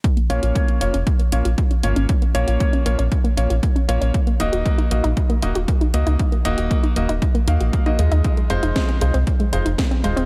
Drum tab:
HH |xxxxxxxxxxxxxxxx|xxxxxxxxxxxxxxxx|xxxxxxxxxxxxxxxx|xxxxxxxxxxxxxxxx|
SD |----------------|----------------|----------------|----------------|
BD |o---o---o---o---|o---o---o---o---|o---o---o---o---|o---o---o---o---|

HH |xxxxxxxxxxxxxxxx|
SD |----o-------o---|
BD |o---o---o---o---|